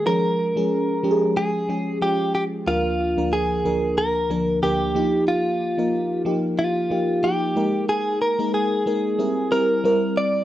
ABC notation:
X:1
M:4/4
L:1/16
Q:"Swing 16ths" 1/4=92
K:Eb
V:1 name="Clean electric guitar"
B8 A4 G2 G2 | F4 A4 B4 G4 | F6 z2 F4 G4 | A2 B2 A6 B4 d2 |]
V:2 name="FM electric piano"
[F,A,_DA]3 [F,A,DA]3 [F,A,DGA]3 z [F,A,DA]2 [F,A,DF]3 z | [D,,F,B,DB]3 [D,,F,B,DB]3 [D,,F,B,DB]3 z [D,,F,B,DB]2 [D,,F,B,DB]2 [F,B,EG]2- | [F,B,EG]2 z [F,B,EB]3 [F,B,EG]3 z [F,B,EG]2 [F,B,EG]2 [A,B,EB]2- | [A,B,EB]2 z [A,B,EB]3 [A,B,EB]2 [G,C=EB]2 [G,CEB]2 [G,CEB]3 z |]